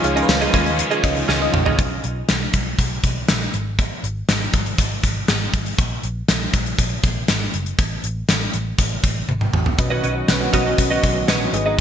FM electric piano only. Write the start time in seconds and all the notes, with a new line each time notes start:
Already playing: C#3 C#4 D#4 F4 G#4 D#5
0.03 C#4 D#4 F4 G#4 F5
0.15 C#4 D#4 F4 G#4 A#4
0.23 B4
1.03 C#4 D#4 F4 G#4 D#5
1.41 C#4 D#4 F4 G#4 D#5
9.78 B2 C#4 F#4 B4 D#5
10.28 C#4 F#4 B4 F#5
10.53 C#4 F#4 B4 D#5
11.53 G#2 B3 D#4 G#4 D#5